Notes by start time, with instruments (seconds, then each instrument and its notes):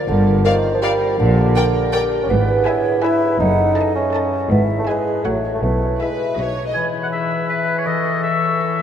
Already playing: harp F3 A#3 F4 A#4 D5, french horn section F4
0.08 double bass section G1, harp G2, cello section G2, bassoon D3, french horn section A#4, flute A#4
0.27 harp D3
0.44 bassoon D#3, harp F4, viola section A#4, flute C5, violin section D5 F5
0.64 harp A#4
0.74 bassoon F3
0.82 bassoon G3, viola section A#4, violin section D5 F5
1.01 harp A#4
1.18 double bass section A#1, harp A#2, cello section A#2, bassoon D3, french horn section D4 G4, flute A#4
1.38 harp A#3
1.56 harp G4, viola section A#4, violin section D5 G5
1.75 harp A#4
1.93 viola section A#4, violin section D5 G5, harp D5
2.11 harp A#4
2.23 bassoon C#4
2.29 double bass section G#1, cello section G#2, harp G#2, bassoon B3, french horn section E4 G#4, flute B4
2.48 harp G#3
2.66 harp G#4, viola section B4, flute C#5, violin section E5 G#5
2.85 harp B4
3.03 bassoon E4, flute B4, viola section B4, violin section E5 G#5, harp E5
3.22 harp B4
3.40 double bass section F#1, harp F#2, cello section F#2, bassoon D#4, french horn section D#4 A4, flute F#5
3.59 harp F#3
3.76 viola section A4, harp A4, flute D#5, violin section D#5 A5
3.95 bassoon C#4, harp D#4
4.14 viola section A4, violin section D#5 A5, harp D#5
4.33 harp A4
4.50 double bass section G#1, cello section G#2, harp G#2, bassoon B3, french horn section E4 G#4, flute E5
4.70 harp G#3
4.79 bassoon A3
4.87 bassoon G#3, harp G#4, flute B4, viola section B4, violin section E5 G#5
5.07 harp B4
5.24 double bass section A1, cello section A2, harp A2, bassoon F#3, french horn section F#4 A4, viola section A4, flute C#5, violin section C#5 F#5
5.44 harp F#4 C#5
5.54 bassoon A3
5.62 double bass section B1, cello section B2, harp B2, bassoon A3, french horn section E4 B4, flute B4
5.82 harp G#3
6.00 bassoon G#3, harp E4, viola section E4, violin section B4 E5
6.19 harp E5
6.37 double bass section B1, cello section B2, harp B2, french horn section D#4, viola section F#4, violin section C#5 D#5
6.56 harp F#4 D#5
6.67 violin section D#5
6.74 bassoon E3, harp E3, clarinet B4, oboe G#5, flute B5
6.94 harp E4
7.03 oboe F#5
7.12 harp G#4, oboe E5
7.31 harp B4
7.49 oboe B4, harp E5
7.68 harp G#4
7.78 oboe C#5
7.86 harp E3, clarinet A4, oboe D#5, flute C#6
8.05 harp E4
8.23 harp A4, oboe E5
8.42 harp C#5
8.60 harp A4
8.79 harp A3